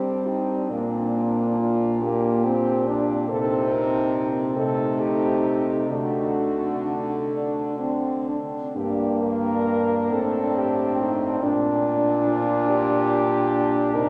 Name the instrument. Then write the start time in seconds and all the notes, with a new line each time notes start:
french horn
Already playing: G3 C4 D4 G4
0.28 D#4
0.70 A#2 A#3 D4
1.59 F4
2.02 A#3 G4
2.45 C4
2.88 D4
3.28 C3 C4 D#4 A4
3.72 A#4
4.56 C3 A3 D#4 A4
5.00 G4
5.90 D3 A3 D4 F#4
7.34 D4
7.79 C4
8.29 D4
8.76 G2 A#3 D4 G4
9.22 A#4
10.11 A2 C4 A4
10.58 G4
11.01 D#4
11.41 A#2 D4
12.26 F4
12.67 D4 G4
13.94 C3 D#4 A#4